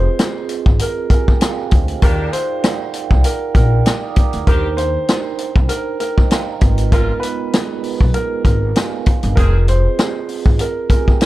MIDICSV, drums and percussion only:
0, 0, Header, 1, 2, 480
1, 0, Start_track
1, 0, Tempo, 612245
1, 1586, Time_signature, 4, 2, 24, 8
1, 8826, End_track
2, 0, Start_track
2, 0, Title_t, "Drums"
2, 148, Note_on_c, 9, 42, 92
2, 153, Note_on_c, 9, 38, 116
2, 156, Note_on_c, 9, 37, 94
2, 226, Note_off_c, 9, 42, 0
2, 231, Note_off_c, 9, 38, 0
2, 234, Note_off_c, 9, 37, 0
2, 383, Note_on_c, 9, 42, 73
2, 461, Note_off_c, 9, 42, 0
2, 517, Note_on_c, 9, 36, 95
2, 596, Note_off_c, 9, 36, 0
2, 622, Note_on_c, 9, 42, 103
2, 701, Note_off_c, 9, 42, 0
2, 863, Note_on_c, 9, 36, 90
2, 866, Note_on_c, 9, 42, 77
2, 941, Note_off_c, 9, 36, 0
2, 944, Note_off_c, 9, 42, 0
2, 1004, Note_on_c, 9, 36, 84
2, 1082, Note_off_c, 9, 36, 0
2, 1104, Note_on_c, 9, 42, 96
2, 1113, Note_on_c, 9, 38, 118
2, 1116, Note_on_c, 9, 37, 101
2, 1182, Note_off_c, 9, 42, 0
2, 1191, Note_off_c, 9, 38, 0
2, 1194, Note_off_c, 9, 37, 0
2, 1342, Note_on_c, 9, 42, 74
2, 1349, Note_on_c, 9, 36, 104
2, 1420, Note_off_c, 9, 42, 0
2, 1427, Note_off_c, 9, 36, 0
2, 1474, Note_on_c, 9, 42, 56
2, 1552, Note_off_c, 9, 42, 0
2, 1583, Note_on_c, 9, 42, 83
2, 1587, Note_on_c, 9, 36, 107
2, 1662, Note_off_c, 9, 42, 0
2, 1665, Note_off_c, 9, 36, 0
2, 1827, Note_on_c, 9, 42, 82
2, 1906, Note_off_c, 9, 42, 0
2, 2066, Note_on_c, 9, 42, 93
2, 2071, Note_on_c, 9, 38, 116
2, 2074, Note_on_c, 9, 37, 92
2, 2145, Note_off_c, 9, 42, 0
2, 2149, Note_off_c, 9, 38, 0
2, 2152, Note_off_c, 9, 37, 0
2, 2301, Note_on_c, 9, 42, 72
2, 2380, Note_off_c, 9, 42, 0
2, 2436, Note_on_c, 9, 36, 95
2, 2514, Note_off_c, 9, 36, 0
2, 2540, Note_on_c, 9, 42, 102
2, 2618, Note_off_c, 9, 42, 0
2, 2782, Note_on_c, 9, 36, 91
2, 2784, Note_on_c, 9, 42, 74
2, 2860, Note_off_c, 9, 36, 0
2, 2863, Note_off_c, 9, 42, 0
2, 3024, Note_on_c, 9, 42, 101
2, 3033, Note_on_c, 9, 38, 122
2, 3036, Note_on_c, 9, 37, 96
2, 3102, Note_off_c, 9, 42, 0
2, 3111, Note_off_c, 9, 38, 0
2, 3115, Note_off_c, 9, 37, 0
2, 3262, Note_on_c, 9, 42, 76
2, 3268, Note_on_c, 9, 36, 103
2, 3340, Note_off_c, 9, 42, 0
2, 3346, Note_off_c, 9, 36, 0
2, 3393, Note_on_c, 9, 42, 57
2, 3472, Note_off_c, 9, 42, 0
2, 3504, Note_on_c, 9, 42, 78
2, 3506, Note_on_c, 9, 36, 106
2, 3582, Note_off_c, 9, 42, 0
2, 3584, Note_off_c, 9, 36, 0
2, 3747, Note_on_c, 9, 42, 86
2, 3825, Note_off_c, 9, 42, 0
2, 3986, Note_on_c, 9, 42, 91
2, 3991, Note_on_c, 9, 38, 115
2, 3994, Note_on_c, 9, 37, 95
2, 4065, Note_off_c, 9, 42, 0
2, 4069, Note_off_c, 9, 38, 0
2, 4073, Note_off_c, 9, 37, 0
2, 4222, Note_on_c, 9, 42, 73
2, 4300, Note_off_c, 9, 42, 0
2, 4356, Note_on_c, 9, 36, 96
2, 4434, Note_off_c, 9, 36, 0
2, 4461, Note_on_c, 9, 42, 100
2, 4539, Note_off_c, 9, 42, 0
2, 4704, Note_on_c, 9, 42, 74
2, 4783, Note_off_c, 9, 42, 0
2, 4842, Note_on_c, 9, 36, 82
2, 4921, Note_off_c, 9, 36, 0
2, 4944, Note_on_c, 9, 42, 97
2, 4953, Note_on_c, 9, 38, 121
2, 4956, Note_on_c, 9, 37, 97
2, 5022, Note_off_c, 9, 42, 0
2, 5031, Note_off_c, 9, 38, 0
2, 5034, Note_off_c, 9, 37, 0
2, 5181, Note_on_c, 9, 42, 76
2, 5187, Note_on_c, 9, 36, 102
2, 5260, Note_off_c, 9, 42, 0
2, 5266, Note_off_c, 9, 36, 0
2, 5313, Note_on_c, 9, 42, 58
2, 5391, Note_off_c, 9, 42, 0
2, 5424, Note_on_c, 9, 42, 82
2, 5426, Note_on_c, 9, 36, 107
2, 5502, Note_off_c, 9, 42, 0
2, 5505, Note_off_c, 9, 36, 0
2, 5667, Note_on_c, 9, 42, 87
2, 5746, Note_off_c, 9, 42, 0
2, 5907, Note_on_c, 9, 42, 90
2, 5911, Note_on_c, 9, 38, 120
2, 5915, Note_on_c, 9, 37, 97
2, 5985, Note_off_c, 9, 42, 0
2, 5990, Note_off_c, 9, 38, 0
2, 5993, Note_off_c, 9, 37, 0
2, 6143, Note_on_c, 9, 46, 52
2, 6221, Note_off_c, 9, 46, 0
2, 6276, Note_on_c, 9, 36, 94
2, 6355, Note_off_c, 9, 36, 0
2, 6381, Note_on_c, 9, 42, 105
2, 6460, Note_off_c, 9, 42, 0
2, 6623, Note_on_c, 9, 36, 92
2, 6626, Note_on_c, 9, 42, 74
2, 6701, Note_off_c, 9, 36, 0
2, 6704, Note_off_c, 9, 42, 0
2, 6865, Note_on_c, 9, 42, 101
2, 6873, Note_on_c, 9, 38, 123
2, 6877, Note_on_c, 9, 37, 99
2, 6943, Note_off_c, 9, 42, 0
2, 6952, Note_off_c, 9, 38, 0
2, 6955, Note_off_c, 9, 37, 0
2, 7103, Note_on_c, 9, 42, 75
2, 7109, Note_on_c, 9, 36, 104
2, 7181, Note_off_c, 9, 42, 0
2, 7187, Note_off_c, 9, 36, 0
2, 7235, Note_on_c, 9, 42, 58
2, 7313, Note_off_c, 9, 42, 0
2, 7345, Note_on_c, 9, 42, 83
2, 7347, Note_on_c, 9, 36, 111
2, 7424, Note_off_c, 9, 42, 0
2, 7426, Note_off_c, 9, 36, 0
2, 7588, Note_on_c, 9, 42, 85
2, 7667, Note_off_c, 9, 42, 0
2, 7829, Note_on_c, 9, 42, 92
2, 7834, Note_on_c, 9, 38, 118
2, 7837, Note_on_c, 9, 37, 92
2, 7907, Note_off_c, 9, 42, 0
2, 7912, Note_off_c, 9, 38, 0
2, 7915, Note_off_c, 9, 37, 0
2, 8064, Note_on_c, 9, 46, 52
2, 8143, Note_off_c, 9, 46, 0
2, 8198, Note_on_c, 9, 36, 96
2, 8276, Note_off_c, 9, 36, 0
2, 8303, Note_on_c, 9, 42, 101
2, 8381, Note_off_c, 9, 42, 0
2, 8544, Note_on_c, 9, 36, 89
2, 8547, Note_on_c, 9, 42, 75
2, 8622, Note_off_c, 9, 36, 0
2, 8625, Note_off_c, 9, 42, 0
2, 8685, Note_on_c, 9, 36, 85
2, 8763, Note_off_c, 9, 36, 0
2, 8786, Note_on_c, 9, 42, 99
2, 8795, Note_on_c, 9, 38, 122
2, 8798, Note_on_c, 9, 37, 103
2, 8826, Note_off_c, 9, 37, 0
2, 8826, Note_off_c, 9, 38, 0
2, 8826, Note_off_c, 9, 42, 0
2, 8826, End_track
0, 0, End_of_file